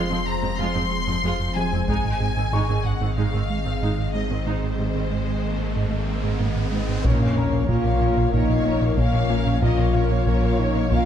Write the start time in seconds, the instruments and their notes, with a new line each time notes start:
Already playing: sub bass F1, analog synth pad F3 C4 G#4 C5, felt piano C5 C6, violin section C6
0.10 analog synth bass F2, cello section F2, viola section F3 C4, synth pluck F4
0.27 analog synth bass F2, violin section A#5
0.43 analog synth bass F2, cello section F2, viola section F3 C4, synth pluck G#3
0.59 analog synth bass F2, cello section F2, synth pluck F3, viola section G#3 F4, violin section C6
0.75 cello section F2, analog synth bass F2, viola section F3 C4, synth pluck G#3
0.91 analog synth bass F3
1.07 analog synth bass F2, cello section F2, viola section F3 C4, synth pluck F4
1.24 cello section F2, analog synth bass F2, synth pluck F3, viola section G#3 F4
1.40 analog synth bass F2
1.55 cello section F2, viola section C3 G#3, analog synth bass F3, synth pluck C4, violin section G#5
1.72 cello section F2, analog synth bass F2, viola section F3 C4, synth pluck G#3
1.88 sub bass G#1, cello section G#2, analog synth bass G#2, analog synth pad D#3 C4 G#4 D#5, synth pluck G#3, viola section G#3 D#4, violin section G#5, taiko, riser
2.05 analog synth bass G#2
2.20 cello section G#2, analog synth bass G#2, viola section C3 G#3, synth pluck G#4
2.36 analog synth bass G#2, cello section G#2, viola section D#3 C4, synth pluck C4
2.53 analog synth bass G#2, cello section G#2, synth pluck G#3, viola section G#3 D#4, felt piano C#6
2.69 analog synth bass G#2, cello section G#2, viola section D#3 C4, synth pluck G#4
2.85 analog synth bass G#2, violin section F#5, taiko
3.01 analog synth bass G#2, cello section G#2, viola section D#3 C4, synth pluck C4
3.17 analog synth bass G#2, cello section G#2, synth pluck G#3, viola section G#3 D#4, violin section F5
3.33 cello section G#2, analog synth bass G#2, viola section D#3 C4, synth pluck C4
3.50 analog synth bass G#3
3.66 cello section G#2, analog synth bass G#2, viola section D#3 C4, synth pluck G#4
3.82 cello section G#2, analog synth bass G#2, synth pluck G#3, viola section G#3 D#4
3.99 analog synth bass G#2
4.14 cello section G#2, viola section C3 G#3, analog synth bass G#3, synth pluck D#4, violin section D#5
4.30 cello section G#2, analog synth bass G#2, viola section D#3 C4, synth pluck C4
4.45 cello section G#2, analog synth bass G#2, viola section G#3 D#4, synth pluck G#3, violin section C5
4.64 analog synth bass G#2
4.79 cello section G#2, analog synth bass G#2, viola section C3 G#3, synth pluck G#4
4.94 cello section G#2, analog synth bass G#2, viola section D#3 C4, synth pluck C4
5.11 cello section G#2, analog synth bass G#2, synth pluck G#3, viola section G#3
5.27 cello section G#2, analog synth bass G#2, synth pluck G#4
5.44 analog synth bass G#2, viola section A#3
5.59 cello section G#2, analog synth bass G#2, synth pluck C4
5.75 cello section G#2, analog synth bass G#2, synth pluck G#3, viola section G#3
5.91 cello section G#2, analog synth bass G#2, synth pluck C4
6.07 analog synth bass G#3, viola section C4
6.23 analog synth bass G#2, cello section G#2, synth pluck G#4
6.39 cello section G#2, analog synth bass G#2, synth pluck G#3, viola section A#3
6.56 analog synth bass G#2
6.72 cello section G#2, analog synth bass G#3, viola section G#3, synth pluck D#4
6.88 cello section G#2, analog synth bass G#2, synth pluck C4
7.04 double bass section A#1, sub bass A#1, cello section A#2, analog synth bass A#2, analog synth pad F3 A#3 A#4 C#5, synth pluck A#3, viola section C#4 A#4, french horn section C#4, violin section C#5, taiko, sub drop
7.20 analog synth bass A#2, viola section A#3 C#5, violin section F5
7.36 analog synth bass A#2, viola section C#4 A#4, synth pluck A#4, violin section C#5, felt piano A#5
7.53 analog synth bass A#2, viola section A#3 C#5, synth pluck C#4, violin section F5
7.68 double bass section A#1, cello section A#2, analog synth bass A#2, synth pluck A#3, viola section C#4 A#4, french horn section F4, violin section C#5, taiko
7.85 analog synth bass A#2, viola section A#3 C#5, synth pluck A#4, violin section F5
8.01 analog synth bass A#2, viola section C#4 A#4, violin section C#5
8.17 analog synth bass A#2, viola section A#3 C#5, synth pluck C#4, violin section F5
8.33 double bass section A#1, analog synth bass A#2, cello section A#2, synth pluck A#3, viola section C#4 A#4, french horn section D#4, violin section C#5, taiko
8.49 analog synth bass A#2, viola section A#3 C#5, synth pluck C#4, violin section F5
8.65 analog synth bass A#3, viola section C#4 A#4, violin section C#5
8.81 analog synth bass A#2, viola section A#3 C#5, synth pluck A#4, violin section F5
8.97 double bass section A#1, analog synth bass A#2, cello section A#2, synth pluck A#3, french horn section C#4, viola section C#4 A#4, violin section C#5 F5, taiko
9.14 analog synth bass A#2, viola section A#3 C#5, violin section F5
9.30 analog synth bass A#3, viola section C#4 A#4, synth pluck F4, violin section C#5
9.46 analog synth bass A#2, viola section A#3 C#5, synth pluck C#4, violin section F5
9.62 double bass section A#1, cello section A#2, analog synth bass A#2, synth pluck A#3, viola section C#4 A#4, french horn section F4, violin section C#5 D#5, taiko
9.79 analog synth bass A#2, viola section A#3 C#5, violin section F5
9.93 analog synth bass A#2, viola section C#4 A#4, felt piano F4 F5, synth pluck A#4, violin section C#5
10.11 analog synth bass A#2, viola section A#3 C#5, synth pluck C#4, violin section F5
10.27 double bass section A#1, cello section A#2, analog synth bass A#2, synth pluck A#3, viola section C#4 A#4, violin section C#5, taiko
10.43 analog synth bass A#2, viola section A#3 C#5, synth pluck A#4, violin section F5
10.59 analog synth bass A#2, viola section C#4 A#4, french horn section D#4, violin section C#5
10.75 analog synth bass A#2, viola section A#3 C#5, synth pluck C#4, violin section F5
10.91 double bass section A#1, cello section A#2, analog synth bass A#2, synth pluck A#3, viola section C#4 A#4, french horn section F4, violin section C#5 F5, taiko